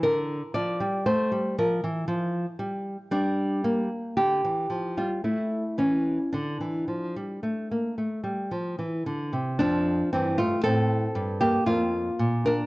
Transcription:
\new Staff \with { instrumentName = "Nylon-string guitar" } { \clef bass \time 3/4 \key d \minor \tempo 4 = 57 << { bes'8 d''8 c''8 bes'8 r4 | d'8 bes8 g'8. f'16 e'8 cis'8 | d'2~ d'8 r8 | \key f \major <f d'>8 <e c'>16 <a f'>16 <c' a'>8. <bes g'>16 <bes f'>8. <d' bes'>16 | } \\ { d8 f16 g16 a16 g16 f16 e16 f8 g8 | g4 d16 e16 f16 g16 a8 e8 | d16 e16 f16 g16 a16 bes16 a16 g16 f16 e16 d16 c16 | f,8 g,8 a,8 g,8 f,8 bes,8 | } >> }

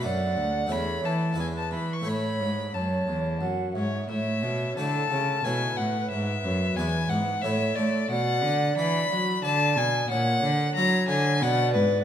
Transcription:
<<
  \new Staff \with { instrumentName = "Violin" } { \time 3/4 \key a \major \tempo 4 = 90 fis''4 b''8 a''8 gis''16 a''16 b''16 cis'''16 | b''4 a''4 r8 cis''8 | e''4 a''4 gis''8 fis''8 | e''4 gis''8 fis''8 e''8 d''8 |
fis''4 b''4 a''8 gis''8 | fis''4 ais''8 gis''8 fis''8 b'8 | }
  \new Staff \with { instrumentName = "Flute" } { \time 3/4 \key a \major d''4 cis''8 r8 b'4 | cis''4 cis''4 fis''8 e''8 | cis''4 a'4 b'4~ | b'2 cis''4 |
d''2 d''4 | cis''8 r8 cis''4 d''4 | }
  \new Staff \with { instrumentName = "Harpsichord" } { \time 3/4 \key a \major <a d' d''>4 <a e' cis''>4 <b e' d''>4 | <a e' cis''>2. | r4 <a e' cis''>4 <a e' cis''>4 | r4 <b e' d''>4 <a e' cis''>4 |
r4 <d' d''>4 <d' d''>4 | r4 <e' cis''>4 <d' b'>4 | }
  \new Staff \with { instrumentName = "Harpsichord" } { \clef bass \time 3/4 \key a \major fis,8 d,8 e,8 e8 e,8 e8 | a,8 gis,8 fis,8 e,8 fis,8 gis,8 | a,8 b,8 d8 cis8 b,8 a,8 | gis,8 fis,8 e,8 gis,8 a,8 a8 |
b,8 d8 e8 fis8 d8 b,8 | ais,8 d8 fis8 d8 b,8 gis,8 | }
  \new Staff \with { instrumentName = "Cello" } { \clef bass \time 3/4 \key a \major fis,8 d,8 e,8 e8 e,8 e8 | a,8 gis,8 fis,8 e,8 fis,8 gis,8 | a,8 b,8 d8 cis8 b,8 a,8 | gis,8 fis,8 e,8 gis,8 a,8 a8 |
b,8 d8 e8 fis8 d8 b,8 | ais,8 d8 fis8 d8 b,8 gis,8 | }
>>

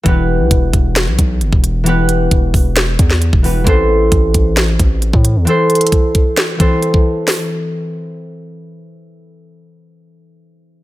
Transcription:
<<
  \new Staff \with { instrumentName = "Harp" } { \time 4/4 \key e \minor \tempo 4 = 133 <e b g' b'>1 | <e b g' b'>2.~ <e b g' b'>8 <e b g' b'>8 | <e c' a' c''>1 | <e c' a' c''>2~ <e c' a' c''>8 <e c' a' c''>4. |
r1 | r1 | }
  \new Staff \with { instrumentName = "808-style bass" } { \clef bass \time 4/4 \key e \minor e,,8. b,,16 e,,8 e,,8. b,,16 b,,8 g,,16 e,,8.~ | e,,4 e,,8 e,,4 e,8. e,,8. | a,,4 a,,8 a,,4 a,,8. a,8 e,16 | r1 |
r1 | r1 | }
  \new DrumStaff \with { instrumentName = "Drums" } \drummode { \time 4/4 <hh bd>4 <hh bd>8 <hh bd>8 <hh sn>8 <hh bd>8 hh16 bd16 hh8 | hh8 hh8 <hh bd>8 <hho bd>8 <hh sn>8 <hh bd>16 sn16 hh16 bd16 hho8 | <hh bd>4 <hh bd>8 <hh bd>8 <hh sn>8 <hh bd>8 hh16 bd16 hh8 | hh8 hh32 hh32 hh32 hh32 <hh bd>8 <hh bd>8 <hh sn>8 <hh bd>8 hh16 bd8. |
<hho sn>4 r4 r4 r4 | r4 r4 r4 r4 | }
>>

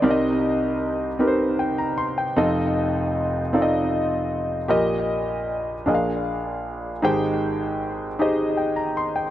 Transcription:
<<
  \new Staff \with { instrumentName = "Grand piano" } { \time 6/8 \key f \dorian \tempo 4. = 51 << { r2 g''16 bes''16 c'''16 g''16~ | g''16 r2 r8. | r2. | r2 g''16 bes''16 c'''16 g''16 | } \\ { <c' ees' g' bes' d'' ees''>4. <c' ees' g' bes' ces'' c''>4. | <c' ees' f' a' ees''>4. <c' ees' f' a' d'' ees''>4. | <g' bes' ees''>4. <d' f' aes' bes' ees'' f''>4. | <ees' g' aes' c'' g''>4. <ees' g' aes' c'' ees''>4. | } >> }
  \new Staff \with { instrumentName = "Grand piano" } { \clef bass \time 6/8 \key f \dorian <c, c>2. | <f,, f,>2. | <bes,, bes,>4. <bes,, bes,>4. | <aes,, aes,>2. | }
>>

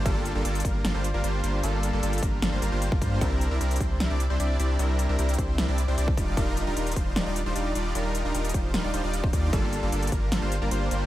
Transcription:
<<
  \new Staff \with { instrumentName = "Supersaw synth" } { \time 4/4 \key g \minor \tempo 4 = 152 <g bes d' f' a'>8. <g bes d' f' a'>16 <g bes d' f' a'>8 <g bes d' f' bes'>8 <g bes d' f' a'>16 <g bes d' f' c''>16 r16 <g bes d' f' bes'>16 <g bes d' f' c''>8 <g bes d' f' c''>8 | <g bes d' f' a'>8. <g bes d' f' a'>16 <g bes d' f' a'>8 <g bes d' f' bes'>8 <g bes d' f' a'>16 <g bes d' f' c''>16 <g bes d' f' bes'>16 <g bes d' f' c''>8 <g bes d' f' bes'>16 <g bes d' f' c''>8 | <g c' d' e' bes'>8. <g c' d' e' bes'>16 <g c' d' e' bes'>8 <g c' d' e' c''>8 <g c' d' e' bes'>16 <g c' d' e' d''>16 r16 <g c' d' e' c''>16 <g c' d' e' d''>8 <g c' d' e' d''>8 | <g c' d' e' bes'>8. <g c' d' e' bes'>16 <g c' d' e' bes'>8 <g c' d' e' c''>8 <g c' d' e' bes'>16 <g c' d' e' d''>16 r16 <g c' d' e' c''>16 <g c' d' e' d''>8 <g d' ees' f' d''>8 |
<g d' ees' f' bes'>8. <g d' ees' f' bes'>16 <g d' ees' f' bes'>8 <g d' ees' f' c''>8 <g d' ees' f' bes'>16 <g d' ees' f' d''>16 r16 <g d' ees' f' c''>16 <g d' ees' f' d''>8 <g d' ees' f' d''>8 | <g d' ees' f' bes'>8. <g d' ees' f' bes'>16 <g d' ees' f' bes'>8 <g d' ees' f' c''>8 <g d' ees' f' bes'>16 <g d' ees' f' d''>16 <g d' ees' f' c''>16 <g d' ees' f' d''>8 <g d' ees' f' c''>16 <g d' ees' f' d''>8 | <g bes d' f' a'>8. <g bes d' f' a'>16 <g bes d' f' a'>8 <g bes d' f' bes'>8 <g bes d' f' a'>16 <g bes d' f' c''>16 r16 <g bes d' f' bes'>16 <g bes d' f' c''>8 <g bes d' f' c''>8 | }
  \new Staff \with { instrumentName = "Sub bass" } { \clef bass \time 4/4 \key g \minor g,,8. g,,16 g,,8 g,,8 g,,16 g,,8 g,,16 g,,8 g,,8 | g,,8. g,,16 g,,8 g,,8 g,,16 g,,16 g,,16 g,,8 g,,16 g,8 | c,8. c,16 c,8 c,8 c,16 c,8 c,16 c,8 c,8 | c,8. c,16 c,8 c,8 c,16 c,8 c,16 c,8 ees,,8 |
ees,,8. ees,,16 ees,,8 ees,,8 ees,,16 ees,,8 ees,,16 ees,,8 ees,,8 | ees,,8. ees,,16 ees,,8 ees,,8 ees,,16 ees,,16 ees,,16 ees,,8 ees,,16 ees,8 | g,,8. g,,16 g,,8 g,,8 g,,16 g,,8 g,,16 g,,8 g,,8 | }
  \new DrumStaff \with { instrumentName = "Drums" } \drummode { \time 4/4 <hh bd>8 hh8 hh16 hh32 hh32 <hh bd>8 <hh sn>8 hh8 hh8 hh8 | hh8 hh8 hh16 hh32 hh32 <hh bd>8 <hh sn>8 hh8 hh16 bd16 <hh bd>8 | <hh bd>8 hh8 hh16 hh32 hh32 <hh bd>8 <hh sn>8 hh8 hh8 hh8 | hh8 hh8 hh16 hh32 hh32 <hh bd>8 <hh sn>8 hh8 hh16 bd16 <hh bd>8 |
<hh bd>8 hh8 hh16 hh32 hh32 <hh bd>8 <hh sn>8 hh8 hh8 hh8 | hh8 hh8 hh16 hh32 hh32 <hh bd>8 <hh sn>8 hh8 hh16 bd16 <hh bd>8 | <hh bd>8 hh8 hh16 hh32 hh32 <hh bd>8 <hh sn>8 hh8 hh8 hh8 | }
>>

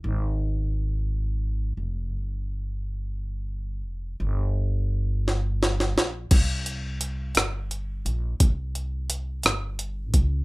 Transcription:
<<
  \new Staff \with { instrumentName = "Upright bass" } { \clef bass \time 6/8 \key c \phrygian \tempo 4. = 57 aes,,2~ aes,,8 f,,8 | g,,2~ g,,8 f,,8 | g,,2~ g,,8 bes,,8 | c,4. g,,4 bes,,8 |
c,4. g,,4 des,8 | }
  \new DrumStaff \with { instrumentName = "Drums" } \drummode { \time 6/8 r4. r4. | r4. r4. | r4. sn8 sn16 sn16 sn8 | <cymc hh bd>8 hh8 hh8 <hh ss>8 hh8 hh8 |
<hh bd>8 hh8 hh8 <hh ss>8 hh8 <hh bd>8 | }
>>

